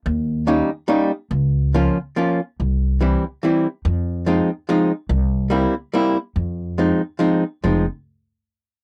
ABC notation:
X:1
M:3/4
L:1/8
Q:1/4=143
K:Fm
V:1 name="Hollow-body jazz guitar"
z2 [G,B,DE] z [G,B,DE] z | z2 [F,B,DF] z [F,B,DF] z | z2 [=E,G,C=E] z [E,G,CE] z | z2 [F,A,CE] z [F,A,CE] z |
z2 [G,B,C=E] z [G,B,CE] z | z2 [F,A,CE] z [F,A,CE] z | [F,A,CE] z4 z |]
V:2 name="Upright bass" clef=bass
E,,4 z2 | D,,4 z2 | C,,4 z2 | F,,4 z2 |
C,,4 z2 | F,,4 z2 | F,,, z4 z |]